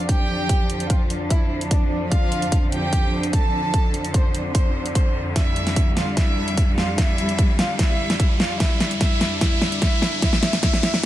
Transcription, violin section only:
0, 0, Header, 1, 2, 480
1, 0, Start_track
1, 0, Key_signature, -1, "minor"
1, 0, Tempo, 405405
1, 585, Time_signature, 4, 2, 24, 8
1, 13092, End_track
2, 0, Start_track
2, 0, Title_t, "Violin section"
2, 0, Program_c, 0, 48
2, 105, Note_on_c, 0, 67, 78
2, 105, Note_on_c, 0, 79, 96
2, 973, Note_off_c, 0, 67, 0
2, 973, Note_off_c, 0, 79, 0
2, 1065, Note_on_c, 0, 65, 69
2, 1065, Note_on_c, 0, 77, 78
2, 1312, Note_off_c, 0, 65, 0
2, 1312, Note_off_c, 0, 77, 0
2, 1545, Note_on_c, 0, 64, 79
2, 1545, Note_on_c, 0, 76, 89
2, 1792, Note_off_c, 0, 64, 0
2, 1792, Note_off_c, 0, 76, 0
2, 2025, Note_on_c, 0, 62, 75
2, 2025, Note_on_c, 0, 74, 90
2, 2272, Note_off_c, 0, 62, 0
2, 2272, Note_off_c, 0, 74, 0
2, 2505, Note_on_c, 0, 65, 78
2, 2505, Note_on_c, 0, 77, 99
2, 3133, Note_off_c, 0, 65, 0
2, 3133, Note_off_c, 0, 77, 0
2, 3225, Note_on_c, 0, 67, 73
2, 3225, Note_on_c, 0, 79, 95
2, 3853, Note_off_c, 0, 67, 0
2, 3853, Note_off_c, 0, 79, 0
2, 3945, Note_on_c, 0, 69, 82
2, 3945, Note_on_c, 0, 81, 96
2, 4813, Note_off_c, 0, 69, 0
2, 4813, Note_off_c, 0, 81, 0
2, 4905, Note_on_c, 0, 72, 70
2, 4905, Note_on_c, 0, 84, 80
2, 5152, Note_off_c, 0, 72, 0
2, 5152, Note_off_c, 0, 84, 0
2, 5384, Note_on_c, 0, 84, 85
2, 5385, Note_on_c, 0, 72, 75
2, 5632, Note_off_c, 0, 72, 0
2, 5632, Note_off_c, 0, 84, 0
2, 5865, Note_on_c, 0, 72, 77
2, 5865, Note_on_c, 0, 84, 87
2, 6112, Note_off_c, 0, 72, 0
2, 6112, Note_off_c, 0, 84, 0
2, 6345, Note_on_c, 0, 64, 68
2, 6345, Note_on_c, 0, 76, 93
2, 6973, Note_off_c, 0, 64, 0
2, 6973, Note_off_c, 0, 76, 0
2, 7065, Note_on_c, 0, 65, 67
2, 7065, Note_on_c, 0, 77, 85
2, 7286, Note_off_c, 0, 65, 0
2, 7287, Note_off_c, 0, 77, 0
2, 7304, Note_on_c, 0, 76, 96
2, 7305, Note_on_c, 0, 64, 74
2, 7933, Note_off_c, 0, 64, 0
2, 7933, Note_off_c, 0, 76, 0
2, 8025, Note_on_c, 0, 65, 73
2, 8025, Note_on_c, 0, 77, 86
2, 8247, Note_off_c, 0, 65, 0
2, 8247, Note_off_c, 0, 77, 0
2, 8265, Note_on_c, 0, 64, 74
2, 8265, Note_on_c, 0, 76, 99
2, 8893, Note_off_c, 0, 64, 0
2, 8893, Note_off_c, 0, 76, 0
2, 8985, Note_on_c, 0, 65, 70
2, 8985, Note_on_c, 0, 77, 84
2, 9206, Note_off_c, 0, 65, 0
2, 9207, Note_off_c, 0, 77, 0
2, 9225, Note_on_c, 0, 64, 79
2, 9225, Note_on_c, 0, 76, 102
2, 9853, Note_off_c, 0, 64, 0
2, 9853, Note_off_c, 0, 76, 0
2, 9945, Note_on_c, 0, 65, 76
2, 9945, Note_on_c, 0, 77, 95
2, 10166, Note_off_c, 0, 65, 0
2, 10167, Note_off_c, 0, 77, 0
2, 10185, Note_on_c, 0, 64, 81
2, 10185, Note_on_c, 0, 76, 99
2, 10646, Note_off_c, 0, 64, 0
2, 10647, Note_off_c, 0, 76, 0
2, 10665, Note_on_c, 0, 64, 78
2, 10665, Note_on_c, 0, 76, 101
2, 11126, Note_off_c, 0, 64, 0
2, 11126, Note_off_c, 0, 76, 0
2, 11145, Note_on_c, 0, 64, 81
2, 11145, Note_on_c, 0, 76, 107
2, 11606, Note_off_c, 0, 76, 0
2, 11607, Note_off_c, 0, 64, 0
2, 11625, Note_on_c, 0, 64, 85
2, 11625, Note_on_c, 0, 76, 112
2, 12087, Note_off_c, 0, 64, 0
2, 12087, Note_off_c, 0, 76, 0
2, 12105, Note_on_c, 0, 64, 82
2, 12105, Note_on_c, 0, 76, 102
2, 12327, Note_off_c, 0, 64, 0
2, 12327, Note_off_c, 0, 76, 0
2, 12345, Note_on_c, 0, 64, 81
2, 12346, Note_on_c, 0, 76, 105
2, 12567, Note_off_c, 0, 64, 0
2, 12567, Note_off_c, 0, 76, 0
2, 12585, Note_on_c, 0, 64, 78
2, 12585, Note_on_c, 0, 76, 103
2, 12807, Note_off_c, 0, 64, 0
2, 12807, Note_off_c, 0, 76, 0
2, 12825, Note_on_c, 0, 64, 82
2, 12825, Note_on_c, 0, 76, 101
2, 13046, Note_off_c, 0, 64, 0
2, 13047, Note_off_c, 0, 76, 0
2, 13092, End_track
0, 0, End_of_file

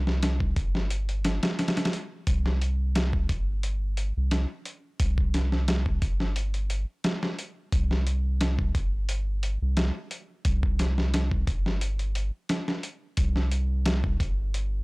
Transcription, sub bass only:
0, 0, Header, 1, 2, 480
1, 0, Start_track
1, 0, Tempo, 681818
1, 1599, Time_signature, 4, 2, 24, 8
1, 10444, End_track
2, 0, Start_track
2, 0, Title_t, "Sub bass"
2, 0, Program_c, 0, 38
2, 0, Note_on_c, 0, 36, 89
2, 379, Note_off_c, 0, 36, 0
2, 401, Note_on_c, 0, 31, 82
2, 983, Note_off_c, 0, 31, 0
2, 1604, Note_on_c, 0, 36, 97
2, 2300, Note_off_c, 0, 36, 0
2, 2323, Note_on_c, 0, 31, 78
2, 2904, Note_off_c, 0, 31, 0
2, 2935, Note_on_c, 0, 36, 83
2, 3140, Note_off_c, 0, 36, 0
2, 3521, Note_on_c, 0, 36, 97
2, 4218, Note_off_c, 0, 36, 0
2, 4241, Note_on_c, 0, 31, 85
2, 4823, Note_off_c, 0, 31, 0
2, 5442, Note_on_c, 0, 36, 95
2, 6139, Note_off_c, 0, 36, 0
2, 6161, Note_on_c, 0, 31, 81
2, 6743, Note_off_c, 0, 31, 0
2, 6771, Note_on_c, 0, 36, 83
2, 6978, Note_off_c, 0, 36, 0
2, 7363, Note_on_c, 0, 36, 89
2, 8060, Note_off_c, 0, 36, 0
2, 8082, Note_on_c, 0, 31, 86
2, 8663, Note_off_c, 0, 31, 0
2, 9280, Note_on_c, 0, 36, 92
2, 9978, Note_off_c, 0, 36, 0
2, 10001, Note_on_c, 0, 31, 85
2, 10444, Note_off_c, 0, 31, 0
2, 10444, End_track
0, 0, End_of_file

